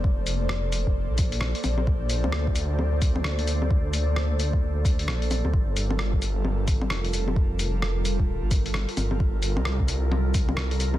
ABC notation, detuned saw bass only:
X:1
M:4/4
L:1/16
Q:"Swing 16ths" 1/4=131
K:Gm
V:1 name="Detuned saw bass" clef=bass
F,,,6- F,,, F,,,2 B,,,4 z B,,,2- | B,,,3 D,,12- D,,- | D,,12 B,,,3 D,, | G,,,12 F,,,4- |
F,,,6- F,,, D,,,2 G,,,4 z G,,,2- | G,,,3 C,,12- C,, |]